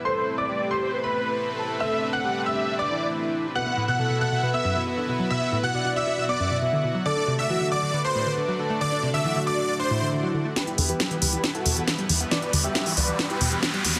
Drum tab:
HH |----------------|----------------|----------------|----------------|
SD |----------------|----------------|----------------|----------------|

HH |----------------|----------------|xxoxxxoxxxoxxxox|xxoxxooxxxo-xxox|
SD |----------------|----------------|o---o---o---o---|o---o---o---o---|